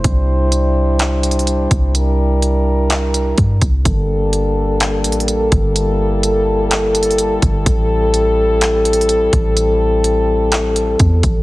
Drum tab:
HH |x-----x-----x--xxxx--x--|x-----x-----x--x--x--x--|x-----x-----x--xxxx--x--|x-----x-----x--xxxx--x--|
CP |------------x-----------|------------x-----------|------------x-----------|------------x-----------|
BD |o--------------------o--|------------------o--o--|o--------------------o--|---------------------o--|

HH |x-----x-----x--xxxx--x--|x-----x-----x--x--x--x--|
CP |------------x-----------|------------x-----------|
BD |o--------------------o--|------------------o--o--|